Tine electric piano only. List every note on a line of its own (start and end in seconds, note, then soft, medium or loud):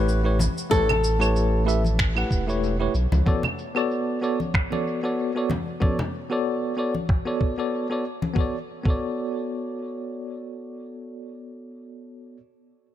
0.00 0.20 A3 medium
0.00 0.20 E4 medium
0.00 0.21 G4 medium
0.00 0.21 B4 medium
0.00 0.21 C#5 medium
0.24 0.37 A3 medium
0.24 0.37 E4 medium
0.24 0.38 G4 medium
0.24 0.38 B4 medium
0.24 0.38 C#5 medium
0.70 0.86 A3 medium
0.70 0.87 E4 medium
0.70 0.87 G4 medium
0.70 0.88 B4 medium
0.70 0.88 C#5 loud
1.19 1.62 A3 medium
1.19 1.63 E4 medium
1.19 1.63 G4 medium
1.19 1.63 B4 medium
1.19 1.64 C#5 loud
1.65 1.82 A3 medium
1.65 1.82 E4 medium
1.65 1.83 G4 medium
1.65 1.83 B4 medium
1.65 1.83 E5 medium
2.15 2.44 A3 medium
2.15 2.44 E4 medium
2.15 2.45 G4 medium
2.15 2.45 B4 medium
2.15 2.45 F#5 medium
2.47 2.75 A3 medium
2.47 2.76 E4 medium
2.47 2.76 G4 medium
2.47 2.76 B4 medium
2.47 2.76 C#5 medium
2.79 2.93 A3 medium
2.79 2.93 E4 medium
2.79 2.93 G4 medium
2.79 2.93 B4 medium
2.79 2.94 C#5 medium
3.26 3.42 B3 medium
3.26 3.42 F#4 medium
3.26 3.43 A4 medium
3.26 3.43 C#5 medium
3.26 3.43 D5 loud
3.75 4.18 B3 medium
3.75 4.18 F#4 medium
3.75 4.19 A4 medium
3.75 4.19 C#5 medium
3.75 4.19 D5 loud
4.22 4.38 B3 medium
4.22 4.38 F#4 medium
4.22 4.38 A4 medium
4.22 4.39 C#5 medium
4.22 4.39 D5 medium
4.71 4.99 B3 medium
4.71 5.00 F#4 medium
4.71 5.00 A4 medium
4.71 5.01 C#5 medium
4.71 5.01 D5 medium
5.03 5.31 B3 medium
5.03 5.31 F#4 medium
5.03 5.31 A4 medium
5.03 5.32 C#5 medium
5.03 5.32 D5 medium
5.35 5.48 B3 medium
5.35 5.49 F#4 medium
5.35 5.49 A4 medium
5.35 5.49 C#5 medium
5.35 5.49 D5 medium
5.80 5.97 B3 medium
5.80 5.97 F#4 medium
5.80 5.98 A4 medium
5.80 5.98 C#5 medium
5.80 5.98 D5 medium
6.30 6.73 B3 medium
6.30 6.74 F#4 medium
6.30 6.74 A4 medium
6.30 6.74 C#5 medium
6.30 6.75 D5 medium
6.77 6.93 B3 medium
6.77 6.94 F#4 medium
6.77 6.94 A4 medium
6.77 6.94 C#5 medium
6.77 6.94 D5 medium
7.25 7.54 B3 medium
7.25 7.55 F#4 medium
7.25 7.55 A4 medium
7.25 7.55 C#5 medium
7.25 7.55 D5 medium
7.58 7.86 B3 medium
7.58 7.86 F#4 medium
7.58 7.86 A4 medium
7.58 7.87 C#5 medium
7.58 7.87 D5 medium
7.90 8.03 B3 medium
7.90 8.04 F#4 medium
7.90 8.04 A4 medium
7.90 8.04 C#5 medium
7.90 8.05 D5 medium
8.33 8.54 B3 medium
8.33 8.55 F#4 medium
8.33 8.56 A4 medium
8.38 8.57 C#5 medium
8.38 8.58 D5 medium
8.83 12.37 B3 medium
8.83 12.37 F#4 medium
8.83 12.38 A4 medium
8.89 12.39 C#5 medium
8.89 12.40 D5 medium